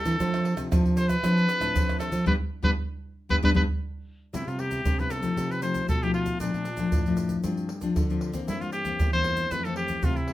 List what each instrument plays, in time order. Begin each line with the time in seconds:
Already playing: nylon-string guitar G3, trumpet A4
0.05 nylon-string guitar E3 C4 D4 A4, pandeiro, shaker, surdo
0.20 nylon-string guitar F3, pandeiro, shaker, surdo
0.34 nylon-string guitar C4 D4 A4, pandeiro, tamborim, shaker
0.45 pandeiro
0.57 nylon-string guitar C3, pandeiro, tamborim, shaker, surdo
0.71 nylon-string guitar C3 F3 C4 D4 A4, pandeiro, tamborim, shaker, surdo
0.85 pandeiro, shaker, surdo
0.96 trumpet C5, pandeiro, shaker
1.09 trumpet B4, pandeiro, tamborim, shaker, surdo
1.23 nylon-string guitar F3 C4 D4 A4, pandeiro, tamborim, shaker, surdo
1.38 pandeiro, shaker
1.49 pandeiro, shaker
1.60 nylon-string guitar A2 C4 D4 A4, pandeiro, tamborim, shaker, surdo
1.74 nylon-string guitar F3, pandeiro, shaker, surdo
1.89 pandeiro, tamborim, shaker
1.99 nylon-string guitar C4 D4 A4, trumpet A4, pandeiro, tamborim, shaker
2.12 nylon-string guitar F3, pandeiro, shaker, surdo
2.26 nylon-string guitar G2 G3 B3 D4, trumpet B4, surdo
2.63 nylon-string guitar G2 G3 B3 D4, trumpet B4, surdo
3.29 nylon-string guitar G2 G3 B3 D4, trumpet B4, surdo
3.42 nylon-string guitar G2 G3 B3 D4, trumpet B4, surdo
3.54 nylon-string guitar G2 G3 B3 D4, trumpet B4, surdo
4.33 nylon-string guitar C3 G3 B3 E4, trumpet E4, pandeiro, shaker, surdo
4.47 nylon-string guitar C3, trumpet F4, pandeiro, shaker
4.58 nylon-string guitar G3 B3 E4, trumpet G4, pandeiro
4.71 pandeiro, shaker, surdo
4.85 nylon-string guitar G2 C3, pandeiro, shaker, surdo
4.99 nylon-string guitar G3 B3 E4, trumpet B4, pandeiro, shaker
5.10 trumpet A4, pandeiro, shaker
5.22 nylon-string guitar F3 A3 D#4, pandeiro, shaker, surdo
5.37 nylon-string guitar C3, pandeiro, shaker, surdo
5.51 trumpet B4, pandeiro, shaker
5.62 nylon-string guitar F3 A3 D#4, trumpet C5, pandeiro, shaker
5.74 pandeiro, shaker, surdo
5.88 nylon-string guitar B2, trumpet A4, pandeiro, shaker, surdo
6.03 nylon-string guitar F3 A3 D#4, trumpet G4, pandeiro, shaker
6.14 trumpet F4, pandeiro
6.26 pandeiro, shaker, surdo
6.40 nylon-string guitar A#2 F3 A3 D4, trumpet D4, pandeiro, shaker, surdo
6.54 nylon-string guitar A#2, pandeiro, shaker
6.65 pandeiro, shaker
6.77 nylon-string guitar F3 A3 D4, pandeiro, shaker, surdo
6.92 nylon-string guitar F2 A2, pandeiro, shaker, surdo
7.06 nylon-string guitar F3 A3 D4, pandeiro, shaker, surdo
7.17 pandeiro, shaker
7.29 pandeiro, shaker, surdo
7.44 nylon-string guitar G2 F3 C4 D4, pandeiro, shaker, surdo
7.57 pandeiro, shaker
7.69 pandeiro
7.81 nylon-string guitar F3 C4 D4, pandeiro, shaker, surdo
7.96 nylon-string guitar D3, pandeiro, shaker, surdo
8.10 nylon-string guitar F3 C4 D4, pandeiro, shaker
8.21 pandeiro
8.33 nylon-string guitar E3 A#3 C4, pandeiro, shaker, surdo
8.48 nylon-string guitar G2, trumpet E4, pandeiro, shaker, surdo
8.61 nylon-string guitar G2, trumpet F4, pandeiro, shaker
8.72 trumpet G4, pandeiro, shaker
8.85 nylon-string guitar E3 A#3 C4, pandeiro, shaker, surdo
8.99 nylon-string guitar E2 G2, pandeiro, shaker, surdo
9.13 nylon-string guitar E3 A#3 C4, trumpet C5, pandeiro, shaker, surdo
9.24 pandeiro
9.37 pandeiro, shaker, surdo
9.51 nylon-string guitar F2 E3 A3 C4, trumpet B4, pandeiro, shaker, surdo
9.65 nylon-string guitar E3 A3 C4, trumpet A4, pandeiro, shaker
9.76 trumpet G4, pandeiro
9.88 pandeiro, shaker, surdo
10.03 nylon-string guitar C3 E3 A3 C4, trumpet F4, pandeiro, shaker, surdo
10.16 trumpet E4, pandeiro, shaker
10.28 nylon-string guitar E3 A3 C4, pandeiro